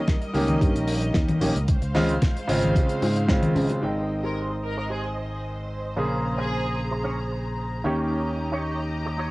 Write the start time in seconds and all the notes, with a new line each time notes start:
Already playing: G3 A#4 D#5
0.08 kick, snare, closed hi-hat
0.22 closed hi-hat
0.34 C#2 D#3 A#3 C#4 G4, open hi-hat, high bongo
0.48 closed hi-hat, high conga
0.61 G2, kick, closed hi-hat
0.75 A#1, closed hi-hat
0.88 open hi-hat
1.01 closed hi-hat
1.14 D#2, kick, snare, closed hi-hat
1.29 closed hi-hat, high conga
1.41 A#1 D#3 A#3 C#4 G4, open hi-hat, low conga
1.55 C#2, closed hi-hat
1.68 G#3 C5 F5, kick, closed hi-hat
1.82 C#2, closed hi-hat
1.95 C#3 G#3 C4 F4, snare, open hi-hat, high conga
2.09 closed hi-hat
2.22 kick, snare, closed hi-hat
2.37 closed hi-hat
2.48 G#1 C#3 G#3 C4 F4, open hi-hat, high bongo
2.63 closed hi-hat, high conga
2.76 C#3, kick, closed hi-hat
2.89 closed hi-hat
3.02 G#2, open hi-hat, high bongo
3.16 closed hi-hat
3.28 C#3 G#3 C4 F4, kick, snare, closed hi-hat
3.43 closed hi-hat, high conga
3.56 C#3, open hi-hat, low conga
3.70 closed hi-hat, high bongo
3.81 G#1 D#3 G#3 C4 G4 G#4 C5 D#5 G5, crash
4.23 G4 G#4 A#4 C5
4.64 A#4
4.77 A#4, muted clean electric guitar stroke
4.90 G4 G#4 C5
5.16 muted clean electric guitar stroke
5.97 A#1 C#3 A#3 C#4 G#4 C5 A#5
6.38 C#4 G#4 C5
6.91 muted clean electric guitar stroke
7.04 C#4 G#4 C#5
7.31 muted clean electric guitar stroke
7.84 D#2 D#3 A#3 C#4 D#4 G4 C#5 D#5 A#5
8.52 D#4 G4 C#5
9.06 muted clean electric guitar stroke
9.18 D#4 G4 C#5